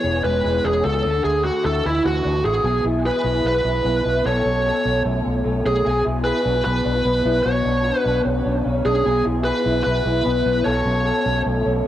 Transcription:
Already playing: clean electric guitar E3 B3 G#4, lead electric guitar C#5
0.03 fingered electric bass E1, clean electric guitar C#4
0.24 fingered electric bass E1, clean electric guitar G#3, lead electric guitar B4
0.44 fingered electric bass E1, clean electric guitar G#4
0.64 fingered electric bass E1, clean electric guitar C#4, lead electric guitar G#4
0.84 fingered electric bass C#2, clean electric guitar F#4, lead electric guitar A4
0.94 clean electric guitar G#4
1.04 fingered electric bass D2, clean electric guitar D3
1.24 fingered electric bass D2, clean electric guitar A3, lead electric guitar G#4
1.44 clean electric guitar F#4, lead electric guitar F#4
1.64 fingered electric bass D2, clean electric guitar E4, lead electric guitar A4
1.84 fingered electric bass D2, clean electric guitar E3, lead electric guitar E4
2.04 fingered electric bass D2, clean electric guitar F#4, lead electric guitar F#4
2.25 fingered electric bass D2, clean electric guitar D4
2.35 clean electric guitar E4
2.45 fingered electric bass A1, clean electric guitar F#4, lead electric guitar G#4
2.64 fingered electric bass B1, clean electric guitar B2 G#4
2.84 fingered electric bass B1, clean electric guitar E4
3.05 clean electric guitar G#4, lead electric guitar B4
3.24 fingered electric bass B1, clean electric guitar E4
3.44 fingered electric bass B1, clean electric guitar B3, lead electric guitar B4
3.65 fingered electric bass B1, clean electric guitar E4
3.85 fingered electric bass B1, clean electric guitar B3
4.05 fingered electric bass B1, clean electric guitar E4
4.25 fingered electric bass B1, clean electric guitar B2 A4, lead electric guitar C#5
4.45 fingered electric bass B1, clean electric guitar C#4
4.66 clean electric guitar A4
4.85 fingered electric bass B1, clean electric guitar C#4
5.05 fingered electric bass B1, clean electric guitar A3
5.24 fingered electric bass B1, clean electric guitar C#4
5.44 fingered electric bass B1, clean electric guitar A3
5.65 fingered electric bass B1, clean electric guitar C#4, lead electric guitar G#4
5.84 fingered electric bass B1, clean electric guitar B2 G#4
6.05 fingered electric bass B1, clean electric guitar E4
6.24 clean electric guitar G#4, lead electric guitar B4
6.45 fingered electric bass B1, clean electric guitar D4
6.54 clean electric guitar E4
6.65 fingered electric bass B1, clean electric guitar B3, lead electric guitar B4
6.85 fingered electric bass B1, clean electric guitar D4
6.95 clean electric guitar E4
7.05 fingered electric bass B1, clean electric guitar B3
7.25 fingered electric bass B1, clean electric guitar E4
7.43 fingered electric bass B1, clean electric guitar B2 F#4, lead electric guitar C#5
7.65 fingered electric bass B1, clean electric guitar D4
7.84 clean electric guitar F#4
7.99 lead electric guitar B4
8.05 fingered electric bass B1, clean electric guitar D4
8.25 fingered electric bass B1, clean electric guitar C#4
8.45 fingered electric bass B1, clean electric guitar D4
8.64 fingered electric bass B1, clean electric guitar C#4
8.85 fingered electric bass B1, clean electric guitar D4, lead electric guitar G#4
9.05 fingered electric bass B1, clean electric guitar B2 G#4
9.25 fingered electric bass B1, clean electric guitar E4
9.44 clean electric guitar G#4, lead electric guitar B4
9.65 fingered electric bass B1, clean electric guitar E4
9.84 fingered electric bass B1, clean electric guitar B3, lead electric guitar B4
10.05 fingered electric bass B1, clean electric guitar E4
10.25 fingered electric bass B1, clean electric guitar B3
10.45 fingered electric bass B1, clean electric guitar E4
10.64 fingered electric bass B1, clean electric guitar B2 A4, lead electric guitar C#5
10.85 fingered electric bass B1, clean electric guitar C#4
11.05 clean electric guitar A4
11.25 fingered electric bass B1, clean electric guitar C#4
11.45 fingered electric bass B1, clean electric guitar A3
11.65 fingered electric bass B1, clean electric guitar C#4

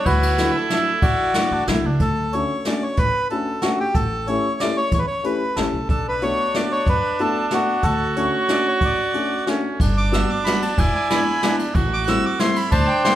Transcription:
0.05 upright bass D2, cor anglais E4, bandoneon F#4 B4, kick, ride
0.23 ride
0.38 upright piano F#3 A3 D4 E4, snare, ride
0.56 bandoneon A4
0.70 upright piano F#3 A3 D4 E4, bandoneon A4, snare, ride
1.02 upright bass A1, bandoneon F#4 D5, kick, ride
1.34 upright piano F#3 A3 D4 E4, cor anglais F#4, snare, ride
1.51 upright bass A1, cor anglais D4
1.67 upright bass B1, upright piano F#3 A3 D4 E4, cor anglais E4, snare, ride
1.84 upright bass C#2, cor anglais D4
2.00 upright bass D2, bandoneon A4, kick, closed hi-hat
2.33 upright piano A3 C#4 D4 F#4, bandoneon C#5, closed hi-hat
2.65 upright piano A3 C#4 D4 F#4, bandoneon D5, snare, closed hi-hat
2.83 bandoneon C#5
2.97 upright bass A1, bandoneon B4, kick, closed hi-hat
3.30 upright piano A3 C#4 D4 F#4, bandoneon A4, closed hi-hat
3.62 upright piano A3 C#4 D4 F#4, bandoneon F#4, snare, closed hi-hat
3.80 bandoneon G4
3.94 upright bass A1, bandoneon A4, kick, closed hi-hat
4.27 upright piano A3 C#4 E4 G4, bandoneon C#5, closed hi-hat
4.60 upright piano A3 C#4 E4 G4, bandoneon D5, snare, closed hi-hat
4.77 bandoneon C#5
4.92 upright bass E2, bandoneon C#5, kick, closed hi-hat
4.99 bandoneon B4
5.07 bandoneon C#5
5.23 upright piano A3 C#4 E4 G4, bandoneon B4, closed hi-hat
5.56 upright bass A1, upright piano A3 C#4 E4 G4, bandoneon A4, snare, closed hi-hat
5.73 upright bass B1
5.89 upright bass B1, cor anglais D4, bandoneon A4, kick, closed hi-hat
6.09 bandoneon B4
6.22 upright piano A3 B3 D4 F#4, bandoneon C#5, closed hi-hat
6.54 upright piano A3 B3 D4 F#4, bandoneon D5, snare, closed hi-hat
6.72 bandoneon C#5
6.87 upright bass F#2, bandoneon B4, kick, closed hi-hat
7.19 upright piano A3 B3 D4 F#4, bandoneon A4, closed hi-hat
7.51 upright piano A3 B3 D4 F#4, bandoneon F#4, snare, closed hi-hat
7.83 upright bass D2, cor anglais F#4, bandoneon A4, kick, closed hi-hat
8.16 upright piano A3 C#4 D4 F#4, bandoneon C#5, closed hi-hat
8.48 upright piano A3 C#4 D4 F#4, bandoneon D5, snare, closed hi-hat
8.68 bandoneon C#5
8.81 upright bass A1, bandoneon D5, kick, closed hi-hat
9.14 upright piano A3 C#4 D4 F#4, closed hi-hat
9.47 upright piano A3 C#4 D4 F#4, cor anglais C#4, snare, closed hi-hat
9.80 upright bass G1, cor anglais D4, kick, ride
9.97 bandoneon D6
10.11 upright piano G3 B3 D4 F#4, bandoneon E6, snare, ride
10.30 bandoneon D6
10.44 upright piano G3 B3 D4 F#4, bandoneon B5, snare, ride
10.62 bandoneon A5, ride
10.78 upright bass E1, cor anglais E4, bandoneon D5 G#5, kick, ride
10.95 bandoneon G#5
11.10 upright piano G#3 B3 D4 E4, bandoneon G#5 B5, snare, ride
11.43 upright piano G#3 B3 D4 E4, cor anglais D4, snare, ride
11.59 ride
11.74 upright bass A1, cor anglais F#4, kick, ride
11.93 bandoneon D6
12.04 upright piano E4, bandoneon F#6, snare, ride
12.08 upright piano G3 A3 C4, bandoneon E6
12.26 bandoneon D6
12.39 upright piano G3 A3 C4 E4, cor anglais E4, bandoneon C6, snare, ride
12.56 bandoneon B5, ride
12.71 upright bass D2, cor anglais D4, bandoneon C5 A5, kick, ride
12.87 bandoneon G5
13.04 upright piano G3 A3 C4 D4, bandoneon G5 C6, snare, ride

